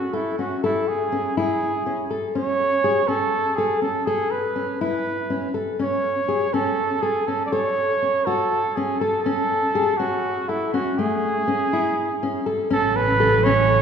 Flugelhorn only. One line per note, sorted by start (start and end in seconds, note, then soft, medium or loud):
0.00 0.15 F#4 medium
0.14 0.38 E4 medium
0.39 0.61 F#4 medium
0.64 0.89 E4 medium
0.88 1.37 G#4 medium
1.38 2.07 G#4 medium
2.35 3.09 C#5 medium
3.08 3.57 A4 medium
3.56 3.82 G#4 medium
3.82 4.07 A4 medium
4.06 4.32 G#4 medium
4.31 4.81 B4 medium
4.81 5.51 B4 medium
5.81 6.55 C#5 medium
6.54 7.03 A4 medium
7.02 7.28 G#4 medium
7.27 7.45 A4 medium
7.46 7.53 D5 soft
7.52 8.27 C#5 medium
8.26 8.77 A4 medium
8.75 9.01 G#4 medium
8.99 9.22 A4 medium
9.23 9.99 A4 medium
9.97 10.50 F#4 medium
10.48 10.73 E4 medium
10.74 11.00 F#4 medium
10.98 12.47 G#4 medium
12.72 12.98 A4 medium
12.96 13.45 B4 medium
13.44 13.82 C#5 loud